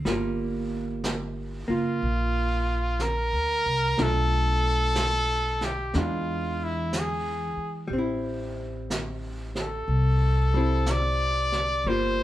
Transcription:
0.05 upright bass G1, hollow-body jazz guitar G3 A#3 F4, brush sweep, snare
1.04 brush sweep, snare, hi-hat pedal
1.68 upright bass F#1, hollow-body jazz guitar A#3 F4
1.72 trumpet F4
2.02 upright bass A#1, brush sweep
2.99 trumpet A#4, brush sweep, snare, hi-hat pedal
3.32 upright bass D2
3.65 upright bass C2
3.97 upright bass B1, hollow-body jazz guitar A3 D4 F4, brush sweep, snare
4.03 trumpet A4
4.95 brush sweep, snare, hi-hat pedal
5.61 trumpet G4, snare
5.93 upright bass E2, hollow-body jazz guitar E3 G#3 D4, brush sweep, snare
5.98 trumpet F4
6.64 trumpet E4
6.93 brush sweep, snare, hi-hat pedal
6.99 trumpet G#4
7.56 muted upright bass stroke
7.88 upright bass A1, hollow-body jazz guitar G3
7.92 hollow-body jazz guitar C4, brush sweep
7.98 hollow-body jazz guitar E4
8.90 brush sweep, snare, hi-hat pedal
9.55 snare
9.60 trumpet A4
9.88 upright bass C2, brush sweep
10.54 hollow-body jazz guitar G3 C4 E4
10.86 brush sweep, snare, hi-hat pedal
10.91 trumpet D5
11.52 snare
11.84 upright bass G1, hollow-body jazz guitar G3 A#3, trumpet C5, brush sweep
11.90 hollow-body jazz guitar F4

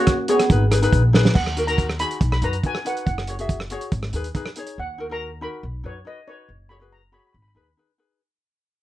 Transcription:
Already playing: steel pan A#3 F#4, ukulele F#4
0.00 ukulele G#4 C#5
0.07 kick, cross-stick, closed hi-hat
0.28 steel pan B3 G#4, ukulele F#4 G#4 C#5, closed hi-hat
0.40 cross-stick, closed hi-hat
0.50 upright bass G#1, ukulele D#4 G#4 B4, kick, closed hi-hat
0.71 ukulele D#4 G#4 B4, cross-stick, closed hi-hat
0.82 ukulele D#4 G#4 B4, closed hi-hat
0.92 upright bass A#1, kick, closed hi-hat
1.13 ukulele D#4 G#4 B4, snare
1.25 snare
1.35 upright bass D#2, steel pan F#5, kick, crash
1.46 cross-stick
1.56 ukulele D#4 F#4 A#4, closed hi-hat
1.67 ukulele D#4 F#4 A#4, steel pan A#5, closed hi-hat
1.78 kick, closed hi-hat
1.90 cross-stick
1.99 ukulele D#4 F#4 G#4, steel pan B5, closed hi-hat
2.11 closed hi-hat
2.21 upright bass B1, kick, closed hi-hat
2.32 steel pan B5, cross-stick
2.42 upright bass F#2, ukulele D#4 F#4 B4, steel pan A#5, closed hi-hat
2.53 closed hi-hat
2.63 ukulele D#4 F#4 B4, steel pan G#5, kick, closed hi-hat
2.75 cross-stick
2.85 ukulele D#4 F#4 B4, steel pan F#5, closed hi-hat
2.97 closed hi-hat
3.06 upright bass F#1, steel pan F#5, kick, closed hi-hat
3.18 cross-stick
3.27 ukulele F#4 G#4 C#5, closed hi-hat
3.39 ukulele F#4 G#4 E5, closed hi-hat
3.49 kick, closed hi-hat
3.60 cross-stick
3.70 ukulele F#4 G#4 C#5, closed hi-hat
3.81 closed hi-hat
3.92 upright bass G#1, kick, closed hi-hat
4.03 cross-stick
4.13 upright bass D#2, ukulele D#4 G#4 B4, closed hi-hat
4.24 closed hi-hat
4.35 ukulele D#4 G#4 B4, kick, closed hi-hat
4.46 cross-stick
4.56 ukulele D#4 G#4 C#5, closed hi-hat
4.67 closed hi-hat
4.78 upright bass D#2, steel pan F#5
4.98 ukulele D#4 F#4 A#4
5.09 ukulele D#4 F#4 A#4, steel pan A#5
5.41 ukulele D#4 F#4 A#4, steel pan B5
5.63 upright bass B1
5.84 upright bass F#2, ukulele D#4 F#4 B4, steel pan C#5
6.05 ukulele D#4 F#4 B4, steel pan D#5
6.27 ukulele D#4 F#4 B4, steel pan C#5
6.49 upright bass F#1
6.69 ukulele F#4 G#4 C#5, steel pan B5
6.80 ukulele F#4 G#4 B4
6.92 steel pan A#5
7.12 ukulele F#4 G#4 C#5, steel pan B5
7.19 steel pan B5
7.27 steel pan B5
7.33 upright bass G#1, steel pan B5
7.42 steel pan B5
7.48 steel pan B5
7.55 upright bass D#2, ukulele D#4 G#4 B4, steel pan B5
7.63 steel pan B5
7.77 ukulele D#4 G#4 B4
7.98 ukulele D#4 G#4 B4

